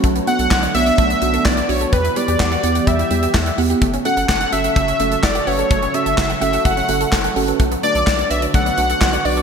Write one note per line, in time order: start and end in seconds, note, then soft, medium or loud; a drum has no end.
0.00 0.20 B1 loud
0.00 1.91 D3 medium
0.00 1.89 F#3 medium
0.00 1.89 A3 medium
0.00 0.15 A3 loud
0.00 3.78 B3 medium
0.00 5.67 F#4 medium
0.00 kick loud
0.00 closed hi-hat medium
0.16 0.26 B3 medium
0.16 closed hi-hat soft
0.27 0.38 A3 medium
0.27 0.47 B3 medium
0.27 0.47 D4 medium
0.27 0.47 F#4 medium
0.27 0.71 F#5 loud
0.27 closed hi-hat medium
0.39 0.47 B1 loud
0.39 0.50 A4 medium
0.39 closed hi-hat medium
0.51 0.68 B1 loud
0.51 0.62 D5 loud
0.51 kick loud
0.51 snare loud
0.51 clap loud
0.63 0.73 D5 medium
0.63 closed hi-hat medium
0.75 0.91 B1 loud
0.75 0.84 B3 medium
0.75 0.84 D4 medium
0.75 0.84 F#4 medium
0.75 0.85 D5 medium
0.75 1.47 E5 loud
0.75 closed hi-hat medium
0.86 1.06 B3 medium
0.86 1.06 D4 medium
0.86 1.06 F#4 medium
0.86 0.97 D5 medium
0.86 closed hi-hat medium
0.98 1.15 B1 loud
0.98 1.09 A3 medium
0.98 kick loud
0.98 closed hi-hat medium
1.10 1.21 B3 medium
1.10 closed hi-hat medium
1.22 1.38 B1 loud
1.22 1.33 A3 medium
1.22 1.41 B3 medium
1.22 1.41 D4 medium
1.22 1.41 F#4 medium
1.22 closed hi-hat medium
1.34 1.44 A4 medium
1.34 closed hi-hat medium
1.45 1.62 B1 loud
1.45 1.71 D5 loud
1.45 1.56 D5 loud
1.45 kick loud
1.45 snare loud
1.45 clap medium
1.57 1.68 D5 medium
1.57 closed hi-hat medium
1.69 1.86 B1 loud
1.69 1.79 B3 medium
1.69 1.79 D4 medium
1.69 1.79 F#4 medium
1.69 1.92 C#5 loud
1.69 1.80 D5 medium
1.69 open hi-hat medium
1.81 1.93 B3 medium
1.81 1.93 D4 medium
1.81 1.93 F#4 medium
1.81 1.92 A4 medium
1.81 closed hi-hat soft
1.93 2.09 E2 loud
1.93 3.80 E3 medium
1.93 2.03 G3 medium
1.93 3.80 G3 medium
1.93 3.80 G4 medium
1.93 2.18 B4 loud
1.93 kick loud
1.93 closed hi-hat medium
2.04 2.15 E4 medium
2.04 closed hi-hat soft
2.16 2.27 G3 medium
2.16 2.36 B3 medium
2.16 2.36 E4 medium
2.16 2.36 G4 medium
2.16 2.89 D5 loud
2.16 closed hi-hat medium
2.28 2.36 E2 loud
2.28 2.39 G4 medium
2.28 closed hi-hat medium
2.40 2.57 E2 loud
2.40 2.51 F#5 medium
2.40 kick loud
2.40 snare loud
2.40 clap loud
2.52 2.62 F#5 medium
2.52 closed hi-hat medium
2.63 2.80 E2 loud
2.63 2.73 B3 medium
2.63 2.73 E4 medium
2.63 2.73 G4 medium
2.63 2.74 F#5 medium
2.63 closed hi-hat medium
2.75 2.95 B3 medium
2.75 2.95 E4 medium
2.75 2.95 G4 medium
2.75 2.86 F#5 medium
2.75 closed hi-hat medium
2.87 3.04 E2 loud
2.87 2.98 G3 medium
2.87 3.58 E5 loud
2.87 kick loud
2.87 closed hi-hat medium
2.99 3.10 E4 medium
2.99 closed hi-hat medium
3.11 3.27 E2 loud
3.11 3.22 G3 medium
3.11 3.31 B3 medium
3.11 3.31 E4 medium
3.11 3.31 G4 medium
3.11 closed hi-hat medium
3.23 3.33 G4 medium
3.23 closed hi-hat medium
3.34 3.51 E2 loud
3.34 3.45 F#5 loud
3.34 kick loud
3.34 snare loud
3.34 clap medium
3.46 3.57 F#5 medium
3.46 closed hi-hat medium
3.58 3.75 E2 loud
3.58 3.68 B3 medium
3.58 3.68 E4 medium
3.58 3.68 G4 loud
3.58 3.69 F#5 medium
3.58 open hi-hat medium
3.70 3.82 B3 medium
3.70 3.82 E4 medium
3.70 3.82 G4 medium
3.70 3.81 G4 medium
3.70 closed hi-hat soft
3.82 3.98 F#1 loud
3.82 7.56 C#3 medium
3.82 9.42 F#3 medium
3.82 9.42 A3 medium
3.82 3.93 A3 medium
3.82 7.56 A4 medium
3.82 kick loud
3.82 closed hi-hat medium
3.93 4.04 C#4 medium
3.93 closed hi-hat soft
4.05 4.16 A3 medium
4.05 4.25 C#4 medium
4.05 4.25 F#4 medium
4.05 4.25 A4 medium
4.05 4.27 F#5 loud
4.05 closed hi-hat medium
4.17 4.25 F#1 loud
4.17 4.28 A4 medium
4.17 closed hi-hat medium
4.29 4.46 F#1 loud
4.29 4.51 F#5 loud
4.29 4.40 F#5 loud
4.29 kick loud
4.29 snare loud
4.29 clap loud
4.41 4.51 F#5 medium
4.41 closed hi-hat medium
4.52 4.69 F#1 loud
4.52 4.62 C#4 medium
4.52 4.62 F#4 medium
4.52 4.62 A4 medium
4.52 5.25 E5 loud
4.52 4.63 F#5 medium
4.52 closed hi-hat medium
4.64 4.84 C#4 medium
4.64 4.84 F#4 medium
4.64 4.84 A4 medium
4.64 4.75 F#5 medium
4.64 closed hi-hat medium
4.76 4.93 F#1 loud
4.76 4.87 A3 medium
4.76 kick loud
4.76 closed hi-hat medium
4.88 4.99 C#4 medium
4.88 closed hi-hat medium
5.00 5.16 F#1 loud
5.00 5.11 A3 medium
5.00 5.19 C#4 medium
5.00 5.19 F#4 medium
5.00 5.19 A4 medium
5.00 closed hi-hat medium
5.12 5.22 A4 medium
5.12 closed hi-hat medium
5.23 5.40 F#1 loud
5.23 5.48 D5 loud
5.23 5.34 F#5 loud
5.23 kick loud
5.23 snare loud
5.23 clap medium
5.35 5.46 F#5 medium
5.35 closed hi-hat medium
5.47 5.64 F#1 loud
5.47 5.57 C#4 medium
5.47 5.57 F#4 medium
5.47 5.57 B4 medium
5.47 5.96 C#5 loud
5.47 5.58 F#5 medium
5.47 open hi-hat medium
5.59 5.78 F#4 medium
5.59 5.70 A4 medium
5.59 5.79 A4 medium
5.59 closed hi-hat soft
5.71 5.87 F#1 loud
5.71 5.81 A3 medium
5.71 7.58 E4 medium
5.71 kick loud
5.71 closed hi-hat medium
5.82 5.93 C#4 medium
5.82 closed hi-hat soft
5.94 6.05 A3 medium
5.94 6.14 C#4 medium
5.94 6.14 F#4 medium
5.94 6.14 A4 medium
5.94 6.41 E5 loud
5.94 closed hi-hat medium
6.06 6.14 F#1 medium
6.06 6.17 A4 medium
6.06 closed hi-hat medium
6.18 6.35 F#1 loud
6.18 6.29 F#5 medium
6.18 kick loud
6.18 snare loud
6.18 clap loud
6.30 6.40 F#5 medium
6.30 closed hi-hat medium
6.41 6.58 F#1 loud
6.41 6.51 C#4 medium
6.41 6.51 F#4 medium
6.41 6.51 A4 medium
6.41 6.63 E5 medium
6.41 6.52 F#5 medium
6.41 closed hi-hat medium
6.53 6.73 C#4 medium
6.53 6.73 F#4 medium
6.53 6.73 A4 medium
6.53 6.64 F#5 medium
6.53 closed hi-hat medium
6.65 6.82 F#1 loud
6.65 6.76 A3 medium
6.65 7.32 F#5 loud
6.65 kick loud
6.65 closed hi-hat medium
6.77 6.88 C#4 medium
6.77 closed hi-hat medium
6.89 7.05 F#1 loud
6.89 7.00 A3 medium
6.89 7.08 C#4 medium
6.89 7.08 F#4 medium
6.89 7.08 A4 medium
6.89 closed hi-hat medium
7.01 7.11 A4 medium
7.01 closed hi-hat medium
7.12 7.29 F#1 loud
7.12 7.23 F#5 loud
7.12 kick loud
7.12 snare loud
7.12 clap medium
7.24 7.35 F#5 medium
7.24 closed hi-hat medium
7.36 7.53 F#1 loud
7.36 7.46 C#4 medium
7.36 7.46 F#4 medium
7.36 7.46 A4 loud
7.36 7.47 F#5 medium
7.36 open hi-hat medium
7.48 7.60 C#4 medium
7.48 7.60 F#4 medium
7.48 7.59 A4 medium
7.48 7.60 B4 medium
7.48 closed hi-hat soft
7.60 7.76 B1 loud
7.60 9.42 D3 medium
7.60 7.70 A3 loud
7.60 9.42 B3 medium
7.60 9.42 F#4 medium
7.60 kick loud
7.60 closed hi-hat medium
7.72 7.82 B3 medium
7.72 closed hi-hat soft
7.83 7.94 A3 medium
7.83 8.03 D4 medium
7.83 8.03 F#4 medium
7.83 8.03 B4 medium
7.83 8.27 D5 loud
7.83 closed hi-hat medium
7.95 8.03 B1 loud
7.95 8.06 A4 medium
7.95 closed hi-hat medium
8.07 8.24 B1 loud
8.07 8.17 D5 loud
8.07 kick loud
8.07 snare loud
8.07 clap loud
8.19 8.29 D5 medium
8.19 closed hi-hat medium
8.30 8.47 B1 loud
8.30 8.40 D4 medium
8.30 8.40 F#4 medium
8.30 8.40 B4 medium
8.30 8.41 D5 medium
8.30 8.41 E5 loud
8.30 closed hi-hat medium
8.42 8.62 D4 medium
8.42 8.62 F#4 medium
8.42 8.62 B4 medium
8.42 8.53 D5 medium
8.42 closed hi-hat medium
8.54 8.71 B1 loud
8.54 8.65 A3 medium
8.54 9.27 F#5 loud
8.54 kick loud
8.54 closed hi-hat medium
8.66 8.77 B3 medium
8.66 closed hi-hat medium
8.78 8.94 B1 loud
8.78 8.89 A3 medium
8.78 8.97 D4 medium
8.78 8.97 F#4 medium
8.78 8.97 B4 medium
8.78 closed hi-hat medium
8.90 9.00 A4 medium
8.90 closed hi-hat medium
9.01 9.18 B1 loud
9.01 9.12 D5 loud
9.01 kick loud
9.01 snare loud
9.01 clap medium
9.13 9.24 D5 medium
9.13 closed hi-hat medium
9.25 9.42 B1 loud
9.25 9.35 D4 medium
9.25 9.35 F#4 medium
9.25 9.35 B4 medium
9.25 9.36 D5 medium
9.25 9.42 D5 loud
9.25 open hi-hat medium
9.37 9.42 D4 medium
9.37 9.42 F#4 medium
9.37 9.42 A4 medium
9.37 9.42 B4 medium
9.37 closed hi-hat soft